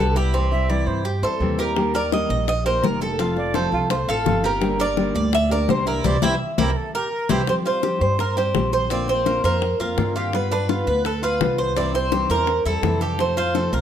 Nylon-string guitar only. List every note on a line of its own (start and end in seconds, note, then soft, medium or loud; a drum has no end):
0.00 0.15 B2 medium
0.00 0.15 D3 medium
0.00 0.15 G3 medium
0.00 0.15 B3 medium
0.00 0.14 G4 medium
0.16 0.33 G3 soft
0.16 0.33 B3 soft
0.16 0.33 G4 soft
0.33 0.51 C3 medium
0.33 0.51 E3 medium
0.33 0.51 G3 medium
0.33 0.51 C4 medium
0.33 0.50 E4 medium
0.51 0.68 G3 soft
0.51 0.69 C4 soft
0.51 0.69 E4 soft
0.69 1.03 C3 medium
0.69 1.04 E3 medium
0.69 1.04 G3 medium
0.69 1.04 C4 medium
0.69 1.04 E4 medium
1.05 muted nylon-string guitar stroke medium
1.23 1.40 G3 soft
1.23 1.40 C4 soft
1.23 1.40 E4 soft
1.41 1.58 C3 medium
1.41 1.58 E3 medium
1.41 1.58 G3 medium
1.41 1.58 C4 medium
1.41 1.57 E4 medium
1.58 1.75 G3 soft
1.58 1.76 C4 soft
1.58 1.75 E4 soft
1.76 1.93 D#3 medium
1.76 1.94 G3 medium
1.76 1.94 A#3 medium
1.76 1.93 D#4 medium
1.76 1.93 G4 medium
1.94 2.11 A#3 soft
1.94 2.12 D#4 soft
1.94 2.11 G4 soft
2.11 2.46 D#3 medium
2.11 2.46 G3 medium
2.11 2.46 A#3 medium
2.11 2.47 D#4 medium
2.11 2.47 G4 medium
2.47 muted nylon-string guitar stroke medium
2.65 2.82 A#3 soft
2.65 2.83 D#4 soft
2.65 2.82 G4 medium
2.83 3.00 D#3 medium
2.83 3.00 G3 medium
2.83 3.01 A#3 medium
2.83 3.01 D#4 medium
2.83 3.00 G4 medium
3.01 3.19 A#3 soft
3.01 3.19 D#4 soft
3.01 3.18 G4 soft
3.19 3.36 C3 medium
3.19 3.36 F3 medium
3.19 3.36 A3 medium
3.19 3.36 C4 medium
3.19 3.35 F4 medium
3.36 3.54 A3 soft
3.36 3.54 C4 soft
3.36 3.54 F4 soft
3.55 3.89 C3 medium
3.55 3.90 F3 medium
3.55 3.89 A3 medium
3.55 3.90 C4 medium
3.55 3.90 F4 medium
3.90 muted nylon-string guitar stroke medium
4.08 4.25 A3 soft
4.08 4.25 C4 soft
4.08 4.25 F4 soft
4.25 4.43 C3 medium
4.25 4.43 F3 medium
4.25 4.43 A3 medium
4.25 4.42 C4 medium
4.25 4.42 F4 medium
4.43 4.61 A3 soft
4.43 4.61 C4 soft
4.43 4.61 F4 soft
4.60 4.78 D3 medium
4.60 4.79 G3 medium
4.60 4.79 A#3 medium
4.60 4.78 D4 medium
4.60 4.77 G4 medium
4.78 4.96 A#3 soft
4.78 4.96 D4 soft
4.78 4.96 G4 medium
4.96 5.31 D3 medium
4.96 5.31 G3 medium
4.96 5.31 A#3 medium
4.96 5.31 D4 medium
4.96 5.32 G4 medium
5.32 muted nylon-string guitar stroke medium
5.50 5.68 A#3 soft
5.50 5.68 D4 medium
5.50 5.68 G4 medium
5.68 5.86 D3 medium
5.68 5.86 G3 medium
5.68 5.86 A#3 medium
5.68 5.85 D4 medium
5.68 5.85 G4 medium
5.86 6.04 A#3 soft
5.86 6.04 D4 soft
5.86 6.03 G4 soft
6.04 6.16 E3 medium
6.04 6.16 G3 loud
6.04 6.16 C4 loud
6.22 6.34 E3 loud
6.22 6.34 G3 medium
6.22 6.34 C4 loud
6.58 6.70 E3 medium
6.58 6.70 G3 medium
6.58 6.70 C4 loud
7.29 7.41 E3 loud
7.29 7.41 G3 loud
7.29 7.41 C4 loud
7.47 7.64 F3 medium
7.47 7.65 G3 medium
7.47 7.64 C4 medium
7.47 7.63 G4 medium
7.64 7.82 G3 soft
7.64 7.82 C4 soft
7.64 7.82 G4 soft
7.82 8.00 F3 medium
7.82 8.00 G3 medium
7.82 8.00 C4 medium
7.82 7.99 G4 medium
8.00 8.17 G3 soft
8.00 8.18 C4 soft
8.00 8.18 G4 soft
8.18 muted nylon-string guitar stroke medium
8.36 8.54 G3 soft
8.36 8.54 C4 soft
8.36 8.54 G4 soft
8.54 8.89 F3 medium
8.54 8.90 G3 medium
8.54 8.90 C4 medium
8.54 8.90 G4 medium
8.90 9.07 D3 medium
8.90 9.08 A#3 medium
8.90 9.08 C4 medium
8.90 9.07 F4 medium
9.08 9.25 A#3 soft
9.08 9.25 C4 soft
9.08 9.25 F4 soft
9.25 9.43 D3 medium
9.25 9.43 A#3 medium
9.25 9.43 C4 medium
9.25 9.43 F4 medium
9.44 9.61 A#3 soft
9.44 9.61 C4 soft
9.44 9.61 F4 soft
9.62 muted nylon-string guitar stroke medium
9.80 9.97 A#3 soft
9.80 9.97 C4 soft
9.80 9.97 F4 medium
9.97 10.32 D3 medium
9.97 10.33 A#3 medium
9.97 10.33 C4 medium
9.97 10.33 F4 medium
10.33 10.50 G3 medium
10.33 10.51 B3 medium
10.33 10.50 F4 medium
10.51 10.68 B3 soft
10.51 10.68 F4 soft
10.68 10.86 G3 medium
10.68 10.86 B3 medium
10.68 10.85 F4 medium
10.87 11.03 B3 soft
10.87 11.04 F4 medium
11.04 muted nylon-string guitar stroke medium
11.22 11.40 B3 soft
11.22 11.40 F4 medium
11.40 11.75 G3 medium
11.40 11.76 B3 medium
11.40 11.76 F4 medium
11.76 11.93 C3 medium
11.76 11.94 E3 medium
11.76 11.94 G3 medium
11.76 11.94 C4 medium
11.76 11.93 E4 medium
11.94 12.12 G3 soft
11.94 12.12 C4 soft
11.94 12.11 E4 soft
12.12 12.29 C3 medium
12.12 12.30 E3 medium
12.12 12.30 G3 medium
12.12 12.30 C4 medium
12.12 12.29 E4 medium
12.30 12.47 G3 soft
12.30 12.47 C4 soft
12.30 12.47 E4 soft
12.48 muted nylon-string guitar stroke medium
12.66 12.83 G3 soft
12.66 12.83 C4 soft
12.66 12.83 E4 soft
12.83 13.18 C3 medium
12.83 13.19 E3 medium
12.83 13.19 G3 medium
12.83 13.19 C4 medium
12.83 13.19 E4 medium
13.19 13.36 C3 medium
13.19 13.37 F3 medium
13.19 13.37 A3 medium
13.19 13.36 C4 medium
13.19 13.35 F4 medium
13.36 13.54 A3 soft
13.36 13.54 C4 soft
13.36 13.54 F4 soft
13.54 13.72 C3 medium
13.54 13.72 F3 medium
13.54 13.72 A3 medium
13.54 13.72 C4 medium
13.54 13.71 F4 medium
13.72 13.81 A3 soft
13.72 13.81 C4 soft
13.72 13.81 F4 soft